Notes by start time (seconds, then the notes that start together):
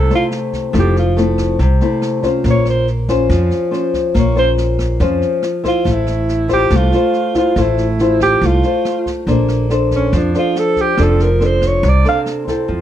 Already playing: C3 A4
0.10 A3 C4 E4, snare
0.15 F4
0.31 snare
0.53 kick, snare
0.73 F1 F3 A3 C4 E4, kick, cross-stick, snare
0.79 G4
0.96 F4, snare
1.17 A3 C4 E4, snare
1.38 kick, cross-stick, snare
1.59 C2 C3, kick, snare
1.81 A3 C4 E4, snare
2.02 cross-stick, snare
2.23 C#4 F4 C5, kick, snare
2.44 A#1 A#3, kick, snare
2.51 C#5
2.65 cross-stick, snare
2.70 C5
2.87 snare
3.08 C#4 F4 C5, kick, snare
3.29 F2 F3, kick, cross-stick, snare
3.51 snare
3.71 C#4 F4 C5, snare
3.94 kick, snare
4.14 A#1 A#3, kick, cross-stick, snare
4.19 C#5
4.36 C#4 F4 C5, snare
4.57 snare
4.79 kick, cross-stick, snare
5.00 F2 F3 C#4 F4 C5, kick, snare
5.22 snare
5.42 cross-stick, snare
5.64 E4 C5, kick, snare
5.68 F4
5.85 A1 A3, kick, snare
5.92 E4
6.07 cross-stick, snare
6.28 snare
6.48 E4 F4 C5, kick, snare
6.53 G4
6.70 C2 A3, kick, cross-stick, snare
6.76 F4
6.92 F4 C5, snare
7.13 snare
7.34 E4 F4 C5, kick, snare
7.56 A1 A3 E4 F4 C5, kick, cross-stick, snare
7.61 E4
7.77 snare
7.99 E4 F4 C5, snare
8.20 G4, kick, cross-stick, snare
8.41 C2 A3, kick, snare
8.46 F4
8.63 F4 C5, snare
8.85 cross-stick, snare
9.06 kick, snare
9.27 A#1 A#3 D4 A4 C5, kick, snare
9.48 cross-stick, snare
9.70 D4 A4 C5, snare
9.91 kick, snare
9.96 C#4
10.12 F2 F3, kick, cross-stick, snare
10.18 D4
10.34 D4 A4 C5, snare
10.39 F4
10.55 A4, snare
10.76 kick, snare
10.81 G4
10.97 F1 F3 C4 D4 A4, kick, cross-stick, snare
11.03 A4
11.19 A#4, snare
11.40 C4 D4 A4, snare
11.46 C5
11.61 kick, cross-stick, snare
11.67 C#5
11.83 C2 C3, kick, snare
11.89 D5
12.04 C4 D4 A4, snare
12.09 F5
12.26 cross-stick, snare
12.47 C4 E4 A4, kick, snare
12.68 F2 F3